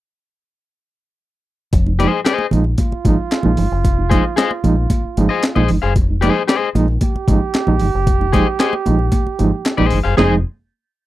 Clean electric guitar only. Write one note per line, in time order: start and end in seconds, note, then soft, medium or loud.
1.99 2.19 G#4 medium
1.99 2.19 C5 medium
1.99 2.19 D#5 medium
2.25 2.45 G#4 medium
2.25 2.45 C5 medium
2.25 2.46 D#5 medium
4.10 4.23 G#4 medium
4.10 4.23 C5 medium
4.10 4.24 D#5 medium
4.36 4.50 G#4 medium
4.36 4.50 C5 medium
4.36 4.50 D#5 loud
5.29 5.43 G#4 medium
5.29 5.43 C5 medium
5.29 5.42 D#5 medium
5.55 5.69 G#4 medium
5.55 5.69 C5 medium
5.55 5.69 D#5 medium
5.82 5.93 G#4 medium
5.82 5.93 C5 medium
5.82 5.92 F5 medium
6.21 6.42 G#4 medium
6.21 6.42 C5 loud
6.21 6.42 D#5 medium
6.48 6.68 G#4 medium
6.48 6.68 C5 medium
6.48 6.69 D#5 loud
8.32 8.46 G#4 medium
8.32 8.46 C5 medium
8.32 8.47 D#5 medium
8.60 8.73 G#4 medium
8.60 8.73 C5 medium
8.60 8.73 D#5 loud
9.77 9.99 G#4 medium
9.77 9.98 C5 medium
9.77 9.98 D#5 medium
10.04 10.15 G#4 medium
10.04 10.15 C5 medium
10.04 10.14 F5 medium
10.17 10.33 G#4 medium
10.17 10.34 C5 medium
10.17 10.34 D#5 medium